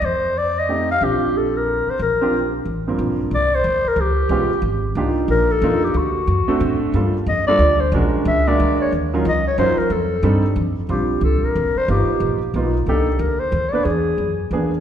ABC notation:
X:1
M:3/4
L:1/16
Q:"Swing" 1/4=182
K:Bb
V:1 name="Clarinet"
c4 d2 e4 f2 | G4 A2 B4 c2 | B8 z4 | z4 d2 c4 B2 |
G8- G2 z2 | z4 B2 A4 G2 | ^F8- F2 z2 | z4 e2 d4 c2 |
z4 =e2 d4 ^c2 | z4 e2 _d2 c2 B2 | A8 z4 | G4 A2 B4 c2 |
G6 z6 | A4 B2 c3- c/2 _d/2 =d2 | ^G6 z6 |]
V:2 name="Grand piano"
z8 [A,CEG]2 z2 | [CDFG]8- [CDFG]2 z2 | z2 [CDFG]2 z6 [G,,B,CFB]2- | [G,,B,CFB]4 z8 |
z4 [_A,_C_DFG]2 z6 | [B,DEFG]6 z2 [B,DEFB]2 z2 | z6 [A,CD^FA]6 | [G,B,DFA]2 z4 [G,B,DFA]2 z4 |
[_A,^CD^FB]6 [A,B,DFB]6 | z2 [_G,_DEFB]2 z4 [G,DEFB]2 z2 | z4 [G,CDEA]2 z6 | [G,CDF]8- [G,CDF]2 z2 |
[^A,=B,^DF]6 z2 [A,B,DF]2 z2 | [B,DEG]2 z8 [B,_CD_c]2 | z8 [^A,=B,D^G]2 z2 |]
V:3 name="Upright bass" clef=bass
F,,12 | B,,,8- B,,,2 z2 | B,,,8 A,,,4 | B,,,4 C,,4 D,,2 z2 |
_D,,4 _C,,2 z2 _A,,,4 | C,,4 B,,,4 F,,4 | D,,4 ^F,,2 z2 A,,4 | G,,4 F,,4 D,,4 |
B,,,4 ^C,,4 D,,4 | E,,4 _D,,4 _G,,2 z2 | F,,4 G,,4 F,,4 | B,,,4 C,,2 z2 F,,,2 z2 |
G,,,2 z2 ^A,,,4 =B,,,4 | C,,4 D,,4 E,,4 | =E,,4 _G,,4 E,,4 |]